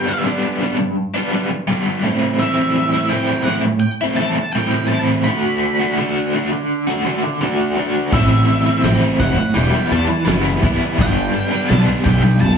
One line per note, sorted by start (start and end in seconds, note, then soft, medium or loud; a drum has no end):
0.00 0.22 G2 medium
0.00 2.13 A2 medium
0.00 0.23 D3 medium
0.00 2.76 E3 medium
0.00 2.31 A3 medium
0.00 0.21 G5 loud
0.06 0.24 G3 medium
0.06 0.25 B3 medium
0.06 0.26 D4 medium
0.23 0.96 G2 medium
0.23 0.59 D3 loud
0.23 0.60 G3 loud
0.23 0.61 B3 medium
0.23 0.63 D4 medium
0.61 0.78 D3 medium
0.61 0.78 G3 medium
0.61 0.78 B3 medium
0.61 0.77 D4 medium
0.78 muted overdriven electric guitar stroke soft
1.14 1.31 G3 medium
1.14 1.33 B3 medium
1.14 1.34 D4 medium
1.32 1.50 D3 medium
1.32 1.50 G3 medium
1.32 1.49 B3 medium
1.32 1.50 D4 medium
1.51 muted overdriven electric guitar stroke soft
1.68 2.02 G2 loud
1.68 2.02 D3 medium
1.68 2.03 G3 loud
1.68 2.03 B3 loud
1.68 2.03 D4 loud
2.03 2.37 A2 loud
2.03 2.39 E3 medium
2.03 2.40 A3 loud
2.03 2.40 C4 loud
2.03 2.41 E4 loud
2.38 3.09 A2 loud
2.38 3.10 E3 loud
2.38 2.96 A3 loud
2.38 2.93 C4 loud
2.38 2.92 E4 loud
2.38 3.13 E5 loud
2.93 3.12 A3 medium
2.93 3.12 C4 medium
2.93 3.13 E4 medium
3.10 3.82 A2 medium
3.10 3.46 E3 loud
3.10 3.48 A3 loud
3.10 3.48 C4 loud
3.10 3.43 G5 medium
3.14 3.49 E4 loud
3.44 3.65 E3 medium
3.44 3.54 F#5 medium
3.48 3.65 A3 medium
3.48 3.64 C4 medium
3.48 3.64 E4 medium
3.65 muted overdriven electric guitar stroke medium
3.80 3.90 G5 medium
4.01 4.19 A3 medium
4.01 4.20 C4 medium
4.01 4.21 E4 medium
4.16 4.38 E3 medium
4.16 4.38 A3 medium
4.16 4.52 A5 loud
4.21 4.37 C4 medium
4.21 4.37 E4 medium
4.38 muted overdriven electric guitar stroke medium
4.53 5.24 A2 loud
4.53 4.90 E3 loud
4.53 4.87 G5 loud
4.57 4.92 A3 medium
4.57 4.92 C4 loud
4.57 4.93 E4 loud
4.88 5.24 E3 medium
4.88 4.98 A5 loud
4.92 5.27 A3 medium
4.92 5.25 C4 medium
4.92 5.26 E4 medium
5.24 5.96 D3 loud
5.24 5.82 A3 loud
5.24 5.80 D4 loud
5.24 5.93 B5 loud
5.29 5.78 F#4 loud
5.80 5.98 A3 medium
5.80 5.99 D4 medium
5.80 6.00 F#4 medium
5.97 6.32 D3 medium
5.97 6.33 A3 medium
5.97 6.35 D4 loud
5.97 6.36 F#4 loud
6.33 6.87 D3 medium
6.33 6.52 A3 medium
6.33 6.51 D4 medium
6.33 6.51 F#4 medium
6.52 muted overdriven electric guitar stroke soft
6.87 7.05 A3 medium
6.87 7.06 D4 medium
6.87 7.07 F#4 medium
7.05 7.40 D3 medium
7.05 7.23 A3 medium
7.05 7.23 D4 medium
7.05 7.23 F#4 medium
7.24 muted overdriven electric guitar stroke medium
7.41 7.75 D3 medium
7.41 7.77 A3 loud
7.41 7.78 D4 loud
7.41 7.79 F#4 loud
7.77 8.10 D3 medium
7.77 8.11 A3 medium
7.77 8.12 D4 medium
7.77 8.12 F#4 medium
8.12 8.41 A1 medium
8.12 8.82 A2 loud
8.12 8.83 E3 loud
8.12 8.68 A3 loud
8.12 8.67 C4 loud
8.12 8.65 E4 loud
8.12 8.86 E5 medium
8.12 kick loud
8.12 crash medium
8.49 crash medium
8.66 8.84 A3 medium
8.66 8.85 C4 medium
8.66 8.86 E4 medium
8.83 8.98 A1 loud
8.83 9.53 A2 medium
8.83 9.18 E3 medium
8.83 9.20 A3 loud
8.83 9.21 C4 loud
8.83 9.22 E4 loud
8.83 8.94 G5 loud
8.83 snare loud
8.83 crash medium
9.19 9.34 F1 loud
9.19 9.38 E3 medium
9.19 9.37 A3 medium
9.19 9.38 C4 medium
9.19 9.55 F#5 medium
9.19 kick medium
9.19 snare soft
9.19 crash medium
9.23 9.37 E4 medium
9.38 muted overdriven electric guitar stroke soft
9.38 snare soft
9.54 9.70 E1 loud
9.54 9.88 E3 medium
9.54 9.75 G3 medium
9.54 9.74 B3 loud
9.54 9.72 E4 loud
9.54 9.92 G5 medium
9.54 crash medium
9.73 9.90 G3 medium
9.73 9.91 B3 medium
9.73 9.92 E4 medium
9.90 10.06 E2 loud
9.90 10.24 E3 medium
9.90 10.08 G3 medium
9.90 10.08 B3 medium
9.90 10.07 E4 medium
9.90 10.25 A5 medium
9.90 crash medium
10.08 muted overdriven electric guitar stroke medium
10.25 10.55 F#1 loud
10.25 10.60 E3 medium
10.25 10.62 G3 loud
10.25 10.62 B3 loud
10.25 10.63 E4 loud
10.25 snare loud
10.25 crash medium
10.61 10.95 E3 medium
10.61 10.96 G3 medium
10.61 10.97 B3 medium
10.61 10.97 E4 medium
10.61 kick loud
10.61 crash medium
10.97 11.27 G1 medium
10.97 11.68 G2 loud
10.97 11.69 D3 loud
10.97 11.53 G3 loud
10.97 11.52 B3 loud
10.97 11.50 D4 loud
10.97 kick loud
10.97 crash medium
11.02 11.69 G5 medium
11.34 crash medium
11.51 11.70 G3 medium
11.51 11.71 B3 medium
11.51 11.72 D4 medium
11.69 11.85 B1 loud
11.69 12.41 G2 loud
11.69 12.04 D3 medium
11.69 12.05 G3 medium
11.69 12.06 B3 loud
11.69 12.07 D4 loud
11.69 11.79 A5 loud
11.69 snare loud
11.69 crash medium
12.04 12.43 B1 loud
12.04 12.23 D3 medium
12.04 12.23 G3 medium
12.04 12.23 B3 medium
12.04 12.22 D4 medium
12.04 12.40 G5 medium
12.04 kick loud
12.04 crash medium
12.24 muted overdriven electric guitar stroke soft
12.24 snare soft
12.41 12.58 G1 loud
12.41 12.58 A5 loud
12.41 crash medium